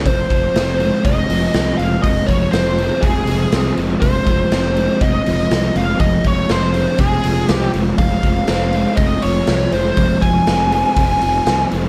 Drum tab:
HH |oooooooo|oooooooo|oooooooo|oooooooo|
SD |--o---o-|--o---o-|--o---o-|--o---o-|
BD |oo--o---|oo--o---|oo--o---|oo--o---|

HH |oooooooo|oooooooo|
SD |--o---o-|--o---o-|
BD |oo--o---|oo--o---|